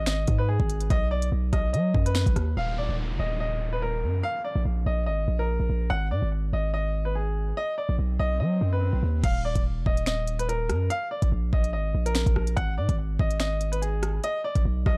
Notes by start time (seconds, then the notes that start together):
Already playing: G#1
0.06 D#5, finger snap, snare, closed hi-hat
0.27 G#2, kick, closed hi-hat
0.38 B4
0.49 G#4
0.60 G#1, kick
0.70 closed hi-hat
0.81 closed hi-hat
0.90 B1 D#5, kick, closed hi-hat
1.11 D5
1.22 closed hi-hat
1.32 B1
1.53 B1 D#5, kick, cross-stick, closed hi-hat
1.73 F#3 D#5, closed hi-hat
1.95 F#2, kick
2.06 B4, closed hi-hat
2.15 finger snap, snare
2.26 B1, kick, closed hi-hat
2.36 D#2, cross-stick, closed hi-hat
2.57 D#1 F5, downlifter
2.78 D5
2.89 D#1
3.10 F1
3.19 D#1 D#5
3.40 D#5
3.73 B4
3.82 A#4
4.03 F#2
4.23 F5
4.44 D5
4.55 A#1
4.65 A#1
4.86 A#1 D#5
5.06 G#1 D#5
5.28 A#1
5.39 A#4
5.60 A#1
5.70 A#1
5.90 G#1 F#5
6.11 G#2 D5
6.22 G#1
6.53 G#1 D#5
6.74 D#5
7.05 B4
7.15 G#4
7.57 D#5, swell
7.78 D5
7.89 A#1
7.99 B1
8.19 B1 D#5
8.40 F#3 D#5
8.61 F#2
8.73 B4
8.93 B1
9.03 D#2
9.24 D#1 F5, kick, closed hi-hat, crash
9.45 D5
9.56 D#1, kick, closed hi-hat
9.76 F1
9.86 D#1 D#5, kick
9.97 closed hi-hat
10.06 D#5, finger snap, snare
10.27 closed hi-hat
10.39 B4, closed hi-hat
10.49 A#4, closed hi-hat
10.69 F#2, cross-stick, closed hi-hat
10.90 F5, closed hi-hat
11.11 D5
11.22 A#1, kick, closed hi-hat
11.32 A#1
11.53 A#1 D#5, kick
11.64 closed hi-hat
11.73 G#1 D#5
11.94 A#1
12.06 A#4, closed hi-hat
12.15 finger snap, snare
12.26 A#1, kick, closed hi-hat
12.36 A#1, cross-stick
12.47 closed hi-hat
12.57 G#1 F#5, kick, closed hi-hat
12.78 G#2 D5
12.89 G#1, kick, closed hi-hat
13.19 G#1 D#5, kick
13.31 closed hi-hat
13.40 D#5, finger snap, snare
13.61 closed hi-hat
13.72 B4, closed hi-hat
13.82 G#4, closed hi-hat
14.03 cross-stick, closed hi-hat
14.24 D#5, closed hi-hat
14.44 D5
14.55 A#1, kick, closed hi-hat
14.65 B1
14.86 B1 D#5, kick, cross-stick